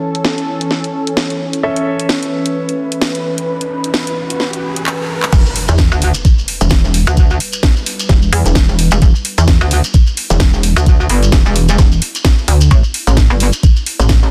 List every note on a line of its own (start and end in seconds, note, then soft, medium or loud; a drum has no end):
0.00 5.29 E3 medium
0.00 1.61 C#4 medium
0.00 5.29 C#4 medium
0.00 1.60 A4 medium
0.00 1.61 A4 medium
0.00 1.61 E5 medium
0.15 closed hi-hat medium
0.25 snare medium
0.38 closed hi-hat soft
0.61 closed hi-hat medium
0.71 snare medium
0.84 closed hi-hat soft
1.07 closed hi-hat medium
1.17 snare loud
1.30 closed hi-hat soft
1.53 closed hi-hat medium
1.63 4.86 C#4 medium
1.63 4.86 A4 medium
1.63 5.29 B4 medium
1.63 4.86 E5 medium
1.63 riser medium
1.76 closed hi-hat soft
2.00 closed hi-hat medium
2.09 snare loud
2.23 closed hi-hat soft
2.46 closed hi-hat medium
2.69 closed hi-hat soft
2.92 closed hi-hat medium
3.02 snare loud
3.15 closed hi-hat soft
3.38 closed hi-hat medium
3.61 closed hi-hat soft
3.84 closed hi-hat medium
3.94 snare loud
4.07 closed hi-hat medium
4.30 closed hi-hat medium
4.40 snare medium
4.53 closed hi-hat soft
4.76 closed hi-hat medium
4.86 clap loud
5.23 clap medium
5.33 5.44 E1 medium
5.33 12.67 G3 medium
5.33 14.31 E4 medium
5.33 12.67 B4 loud
5.33 kick loud
5.33 closed hi-hat medium
5.33 crash loud
5.33 impact medium
5.33 shekere medium
5.46 shekere soft
5.56 open hi-hat loud
5.68 5.90 E2 medium
5.68 closed hi-hat medium
5.68 shekere medium
5.78 kick loud
5.78 snare loud
5.78 closed hi-hat medium
5.78 shekere medium
5.92 6.13 D2 loud
5.92 shekere soft
6.02 open hi-hat loud
6.14 closed hi-hat medium
6.14 shekere medium
6.25 kick loud
6.25 closed hi-hat medium
6.25 shekere medium
6.38 shekere soft
6.48 open hi-hat loud
6.61 7.05 E1 loud
6.61 closed hi-hat medium
6.61 shekere medium
6.70 kick loud
6.70 snare loud
6.70 closed hi-hat medium
6.70 shekere medium
6.84 shekere soft
6.94 open hi-hat loud
7.07 7.39 D2 loud
7.07 closed hi-hat medium
7.07 shekere medium
7.17 kick loud
7.17 closed hi-hat medium
7.17 shekere medium
7.30 shekere soft
7.40 open hi-hat loud
7.53 closed hi-hat medium
7.53 shekere medium
7.63 kick loud
7.63 snare loud
7.63 closed hi-hat medium
7.63 shekere medium
7.77 shekere soft
7.86 open hi-hat loud
8.00 closed hi-hat medium
8.00 shekere medium
8.09 8.31 E1 loud
8.09 kick loud
8.09 snare medium
8.09 closed hi-hat medium
8.09 shekere medium
8.22 shekere soft
8.33 8.44 E2 loud
8.33 open hi-hat loud
8.46 8.90 E1 loud
8.46 closed hi-hat medium
8.46 shekere medium
8.55 kick loud
8.55 snare loud
8.55 closed hi-hat medium
8.55 shekere medium
8.68 shekere soft
8.79 open hi-hat loud
8.91 9.00 E1 loud
8.91 closed hi-hat medium
8.91 shekere medium
9.02 9.13 E1 loud
9.02 kick loud
9.02 closed hi-hat medium
9.02 shekere medium
9.15 shekere soft
9.25 open hi-hat loud
9.38 9.59 E2 loud
9.38 closed hi-hat medium
9.38 shekere medium
9.48 kick loud
9.48 snare loud
9.48 closed hi-hat medium
9.48 shekere medium
9.61 9.82 D2 medium
9.61 shekere soft
9.71 open hi-hat loud
9.84 closed hi-hat medium
9.84 shekere medium
9.94 kick loud
9.94 closed hi-hat medium
9.94 shekere medium
10.07 shekere soft
10.17 open hi-hat loud
10.30 10.74 E1 loud
10.30 closed hi-hat soft
10.30 shekere medium
10.40 kick loud
10.40 snare loud
10.40 closed hi-hat medium
10.40 shekere medium
10.53 shekere soft
10.63 open hi-hat loud
10.76 11.08 D2 loud
10.76 closed hi-hat soft
10.76 shekere medium
10.86 kick loud
10.86 closed hi-hat medium
10.86 shekere medium
11.00 shekere soft
11.10 11.31 G1 loud
11.10 open hi-hat loud
11.23 closed hi-hat medium
11.23 shekere medium
11.32 11.44 E1 medium
11.32 kick loud
11.32 snare loud
11.32 closed hi-hat medium
11.32 shekere medium
11.45 11.77 E1 medium
11.45 shekere soft
11.56 open hi-hat loud
11.69 closed hi-hat medium
11.69 shekere medium
11.78 12.00 E1 loud
11.78 kick loud
11.78 snare medium
11.78 closed hi-hat medium
11.78 shekere medium
11.92 shekere soft
12.02 open hi-hat loud
12.15 closed hi-hat soft
12.15 shekere medium
12.25 kick loud
12.25 snare loud
12.25 closed hi-hat medium
12.25 shekere medium
12.38 shekere soft
12.48 12.69 D2 medium
12.48 open hi-hat loud
12.61 closed hi-hat soft
12.61 shekere medium
12.71 12.82 A1 medium
12.71 14.31 A3 medium
12.71 14.31 C#5 medium
12.71 kick loud
12.71 closed hi-hat medium
12.71 shekere medium
12.84 shekere soft
12.94 open hi-hat loud
13.07 13.28 A1 medium
13.07 closed hi-hat soft
13.07 shekere medium
13.17 kick loud
13.17 snare loud
13.17 closed hi-hat medium
13.17 shekere medium
13.30 13.51 G1 medium
13.30 shekere soft
13.40 open hi-hat loud
13.52 closed hi-hat medium
13.52 shekere medium
13.63 kick loud
13.63 closed hi-hat medium
13.63 shekere medium
13.76 shekere soft
13.86 open hi-hat loud
13.99 14.31 A1 loud
13.99 closed hi-hat soft
13.99 shekere medium
14.09 kick loud
14.09 snare loud
14.09 closed hi-hat medium
14.09 shekere medium
14.23 shekere soft